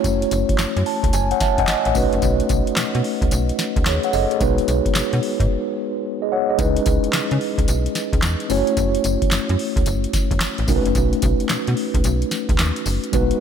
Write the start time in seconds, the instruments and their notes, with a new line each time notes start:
Already playing: tine electric piano A3 C#4 E4 F#4 C#5
0.04 fm bass F#1, kick, closed hi-hat, tambourine
0.22 closed hi-hat
0.31 fm bass F#1, closed hi-hat, tambourine
0.49 kick, closed hi-hat
0.58 fm bass F#2, snare, clap, closed hi-hat, tambourine
0.76 fm bass F#2, closed hi-hat
0.86 tine electric piano A5, open hi-hat
1.03 fm bass C#2, kick, closed hi-hat
1.13 fm bass F#1, tine electric piano G#5, closed hi-hat, tambourine
1.31 tine electric piano C#5 F#5, closed hi-hat
1.40 tine electric piano E5 A5, kick, snare, closed hi-hat, tambourine
1.58 fm bass F#1, tine electric piano D#5 F#5 G#5, kick, closed hi-hat
1.68 tine electric piano D#5, snare, clap, closed hi-hat, tambourine
1.85 fm bass A1, tine electric piano C#5 F#5, closed hi-hat
1.94 fm bass B1, tine electric piano A3 C#4 D#4 F#4 B4, kick, open hi-hat, tambourine
2.13 fm bass F#1, closed hi-hat
2.22 fm bass B1, kick, closed hi-hat, tambourine
2.40 closed hi-hat
2.49 fm bass B1, kick, closed hi-hat, tambourine
2.67 closed hi-hat
2.76 fm bass B2, snare, clap, closed hi-hat, tambourine
2.95 fm bass B2, closed hi-hat
3.04 open hi-hat
3.22 fm bass C#2, kick, closed hi-hat
3.31 fm bass B1, closed hi-hat, tambourine
3.49 closed hi-hat
3.59 snare, closed hi-hat, tambourine
3.76 fm bass C#2, kick, closed hi-hat
3.86 fm bass D#2, tine electric piano G#4 C#5, snare, clap, closed hi-hat, tambourine
4.03 tine electric piano C#5 F#5, closed hi-hat
4.13 fm bass F#1, tine electric piano A4 D#5, open hi-hat, tambourine
4.31 tine electric piano G#4 C#5, closed hi-hat
4.40 fm bass B1, tine electric piano G#3 B3 D#4 F#4 B4, kick, closed hi-hat, tambourine
4.58 closed hi-hat
4.68 fm bass B1, closed hi-hat, tambourine
4.86 kick, closed hi-hat
4.95 fm bass B2, snare, clap, closed hi-hat, tambourine
5.13 fm bass B2, closed hi-hat
5.23 open hi-hat
5.40 fm bass G#2, kick, closed hi-hat
6.22 tine electric piano G#4 D#5
6.32 tine electric piano C#5 F#5
6.50 tine electric piano G#4 D#5
6.58 fm bass C#2, tine electric piano G#3 C#4 D#4 E4 B4, kick, closed hi-hat, tambourine
6.76 closed hi-hat
6.86 fm bass C#2, kick, closed hi-hat, tambourine
7.04 closed hi-hat
7.13 fm bass C#3, snare, clap, closed hi-hat, tambourine
7.31 fm bass C#3, closed hi-hat
7.41 open hi-hat
7.58 fm bass C#2, kick, closed hi-hat
7.68 fm bass B1, closed hi-hat, tambourine
7.86 closed hi-hat
7.95 snare, closed hi-hat, tambourine
8.13 fm bass C#2, kick, closed hi-hat
8.22 fm bass E2, snare, clap, closed hi-hat, tambourine
8.40 closed hi-hat
8.49 fm bass F#1, tine electric piano A3 C#4 E4 F#4 C#5, open hi-hat, tambourine
8.67 closed hi-hat
8.77 fm bass F#1, kick, closed hi-hat, tambourine
8.95 closed hi-hat
9.04 fm bass F#1, closed hi-hat, tambourine
9.22 kick, closed hi-hat
9.31 fm bass F#2, snare, clap, closed hi-hat, tambourine
9.49 fm bass F#2, closed hi-hat
9.59 open hi-hat
9.76 fm bass C#2, kick, closed hi-hat
9.86 fm bass F#1, closed hi-hat, tambourine
10.04 closed hi-hat
10.13 kick, snare, closed hi-hat, tambourine
10.31 fm bass F#1, kick, closed hi-hat
10.41 snare, clap, closed hi-hat, tambourine
10.58 fm bass A1, closed hi-hat
10.67 fm bass B1, tine electric piano A3 C#4 D#4 F#4 A#4, kick, open hi-hat, tambourine
10.76 tine electric piano B4
10.85 fm bass F#1, closed hi-hat
10.95 fm bass B1, kick, closed hi-hat, tambourine
11.13 closed hi-hat
11.22 fm bass B1, kick, closed hi-hat, tambourine
11.40 closed hi-hat
11.49 fm bass B2, snare, clap, closed hi-hat, tambourine
11.67 fm bass B2, closed hi-hat
11.77 open hi-hat
11.94 fm bass C#2, kick, closed hi-hat
12.04 fm bass B1, closed hi-hat, tambourine
12.22 closed hi-hat
12.31 snare, closed hi-hat, tambourine
12.49 fm bass C#2, kick, closed hi-hat
12.59 fm bass D#2, snare, clap, closed hi-hat, tambourine
12.76 closed hi-hat
12.86 fm bass F#1, open hi-hat, tambourine
13.04 closed hi-hat
13.12 fm bass B1, tine electric piano G#3 B3 D#4 F#4 B4, kick, closed hi-hat, tambourine
13.31 closed hi-hat